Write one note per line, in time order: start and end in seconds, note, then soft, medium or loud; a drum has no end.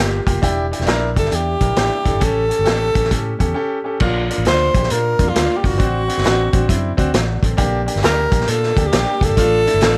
0.00 0.20 G1 medium
0.00 0.19 A#3 medium
0.00 0.19 F4 medium
0.00 0.20 G4 medium
0.00 0.28 G4 medium
0.26 0.39 F1 medium
0.26 0.38 A#3 medium
0.26 0.38 F4 medium
0.26 0.38 G4 medium
0.26 kick medium
0.26 closed hi-hat medium
0.42 0.71 E1 medium
0.42 0.64 D4 loud
0.42 0.64 E4 loud
0.42 0.65 G4 loud
0.42 kick medium
0.42 closed hi-hat medium
0.72 0.83 D4 medium
0.72 0.84 E4 medium
0.72 0.84 G4 medium
0.72 closed hi-hat medium
0.80 0.85 E1 medium
0.80 snare soft
0.86 1.18 A#1 medium
0.86 1.08 D4 loud
0.86 1.09 E4 medium
0.86 1.09 A#4 loud
0.86 snare loud
0.86 closed hi-hat medium
1.16 1.29 G1 medium
1.16 1.28 D4 medium
1.16 1.28 E4 medium
1.16 1.28 G4 medium
1.16 1.37 A4 medium
1.16 kick medium
1.16 closed hi-hat medium
1.25 snare soft
1.30 1.55 E2 medium
1.30 1.53 D4 medium
1.30 1.53 E4 medium
1.30 1.54 G4 medium
1.30 closed hi-hat medium
1.35 2.26 G4 medium
1.60 1.73 A#1 medium
1.60 1.72 D4 medium
1.60 1.73 E4 medium
1.60 1.73 A#4 medium
1.60 kick medium
1.60 closed hi-hat medium
1.76 1.88 A1 medium
1.76 1.98 D4 medium
1.76 1.99 E4 medium
1.76 1.99 G4 medium
1.76 snare loud
1.76 closed hi-hat medium
2.04 2.12 F1 medium
2.04 2.17 D4 medium
2.04 2.17 E4 medium
2.04 2.18 A4 medium
2.04 kick medium
2.04 closed hi-hat medium
2.15 2.20 G1 medium
2.20 2.50 A1 medium
2.20 2.43 C#4 loud
2.20 2.43 G4 medium
2.20 2.43 A4 loud
2.20 kick medium
2.20 closed hi-hat medium
2.24 3.57 A4 loud
2.48 2.61 C#4 medium
2.48 2.62 G4 medium
2.48 2.62 A4 medium
2.48 closed hi-hat medium
2.59 2.65 G1 medium
2.64 2.89 A1 medium
2.64 2.87 C#4 medium
2.64 2.87 G4 medium
2.64 2.88 A4 loud
2.64 snare medium
2.64 closed hi-hat medium
2.94 3.08 A1 medium
2.94 3.06 C#4 medium
2.94 3.07 G4 medium
2.94 3.07 A4 medium
2.94 kick medium
2.94 closed hi-hat medium
3.04 snare soft
3.10 3.34 A2 medium
3.10 3.32 C#4 medium
3.10 3.33 G4 medium
3.10 3.33 A4 medium
3.10 kick medium
3.10 closed hi-hat medium
3.39 3.52 E2 medium
3.39 3.51 C#4 medium
3.39 3.52 G4 medium
3.39 3.52 A4 medium
3.39 kick medium
3.39 closed hi-hat medium
3.54 3.77 C#4 medium
3.54 3.77 G4 medium
3.54 3.78 A4 loud
3.84 3.96 C#4 medium
3.84 3.96 G4 medium
3.84 3.97 A4 medium
4.00 4.29 A#1 medium
4.00 4.22 A#3 loud
4.00 4.22 D4 medium
4.00 4.23 F4 loud
4.00 kick medium
4.00 crash medium
4.30 4.41 A#3 medium
4.30 4.42 D4 medium
4.30 4.42 F4 medium
4.30 closed hi-hat medium
4.38 4.44 A1 medium
4.45 4.68 D2 medium
4.45 4.67 A#3 medium
4.45 4.68 D4 medium
4.45 4.68 F4 medium
4.45 4.94 C5 loud
4.45 snare medium
4.45 closed hi-hat medium
4.74 4.87 A#1 medium
4.74 4.86 A#3 medium
4.74 4.87 D4 medium
4.74 4.87 G4 medium
4.74 kick medium
4.74 closed hi-hat medium
4.83 snare soft
4.90 5.14 A#2 medium
4.90 5.12 A#3 medium
4.90 5.12 D4 medium
4.90 5.12 F4 medium
4.90 5.31 A#4 loud
4.90 closed hi-hat medium
5.19 5.31 F2 medium
5.19 5.31 A#3 medium
5.19 5.31 D4 medium
5.19 5.31 F4 medium
5.19 kick medium
5.19 closed hi-hat medium
5.29 5.58 F4 medium
5.34 5.47 D2 medium
5.34 5.56 A#3 medium
5.34 5.57 D4 medium
5.34 5.57 F4 medium
5.34 snare loud
5.34 closed hi-hat loud
5.57 5.68 G4 medium
5.63 5.70 F1 medium
5.63 5.75 A#3 medium
5.63 5.76 D4 medium
5.63 5.76 F4 medium
5.63 6.99 F#4 medium
5.63 kick medium
5.63 open hi-hat medium
5.74 5.79 G1 medium
5.78 6.08 A1 loud
5.78 6.00 C4 loud
5.78 6.01 D4 medium
5.78 6.01 F#4 loud
5.78 kick medium
5.78 closed hi-hat medium
6.08 6.20 C4 medium
6.08 6.20 D4 medium
6.08 6.20 F#4 medium
6.08 closed hi-hat medium
6.18 6.23 G1 medium
6.18 snare soft
6.24 6.48 A1 medium
6.24 6.46 C4 medium
6.24 6.46 D4 medium
6.24 6.46 F#4 loud
6.24 snare medium
6.24 closed hi-hat medium
6.53 6.66 A1 medium
6.53 6.65 C4 medium
6.53 6.65 D4 medium
6.53 6.66 F#4 loud
6.53 kick medium
6.53 closed hi-hat medium
6.68 6.92 F#2 medium
6.68 6.90 C4 medium
6.68 6.91 D4 medium
6.68 6.91 E4 medium
6.68 kick medium
6.68 closed hi-hat medium
6.97 7.10 D2 medium
6.97 7.09 C4 loud
6.97 7.10 D4 loud
6.97 7.10 F#4 loud
6.97 kick medium
6.97 closed hi-hat medium
7.12 7.37 A1 loud
7.12 7.41 D5 medium
7.12 snare loud
7.12 closed hi-hat loud
7.43 7.55 A1 medium
7.43 7.86 C4 medium
7.43 7.85 A4 medium
7.43 kick medium
7.43 closed hi-hat medium
7.57 7.87 A#1 loud
7.57 7.79 A#3 loud
7.57 7.80 D4 loud
7.57 7.80 G4 loud
7.57 kick medium
7.57 closed hi-hat medium
7.86 7.98 A#3 medium
7.86 7.99 D4 medium
7.86 7.99 G4 loud
7.86 closed hi-hat medium
7.96 8.02 G1 medium
7.96 snare soft
8.01 8.26 D2 medium
8.01 8.24 A#3 medium
8.01 8.24 D4 medium
8.01 8.25 G4 medium
8.01 8.51 A#4 loud
8.01 snare loud
8.01 closed hi-hat medium
8.31 8.44 A#1 medium
8.31 8.43 A#3 medium
8.31 8.44 D4 medium
8.31 8.44 G4 medium
8.31 kick medium
8.31 closed hi-hat medium
8.41 snare soft
8.47 8.71 A#2 loud
8.47 8.69 A#3 medium
8.47 8.70 D4 medium
8.47 8.70 F4 medium
8.47 8.88 A4 loud
8.47 closed hi-hat medium
8.63 snare soft
8.77 8.89 D2 medium
8.77 8.88 A#3 medium
8.77 8.89 D4 medium
8.77 8.89 G4 loud
8.77 kick medium
8.77 closed hi-hat medium
8.87 9.26 G4 medium
8.91 9.04 A#1 loud
8.91 9.14 A#3 medium
8.91 9.14 D4 medium
8.91 9.14 G4 loud
8.91 snare loud
8.91 closed hi-hat loud
9.21 9.27 F1 medium
9.21 9.33 A#3 medium
9.21 9.33 D4 medium
9.21 9.33 G4 medium
9.21 kick medium
9.21 closed hi-hat medium
9.25 9.98 A4 loud
9.29 9.35 G1 medium
9.36 9.66 A1 loud
9.36 9.58 A3 loud
9.36 9.59 D4 medium
9.36 9.59 F4 loud
9.36 kick medium
9.36 closed hi-hat medium
9.66 9.78 A3 medium
9.66 9.78 D4 medium
9.66 9.78 E4 medium
9.66 closed hi-hat medium
9.74 9.80 G1 medium
9.81 9.98 A1 medium
9.81 9.98 A3 loud
9.81 9.98 D4 medium
9.81 9.98 F4 loud
9.81 snare loud
9.81 closed hi-hat medium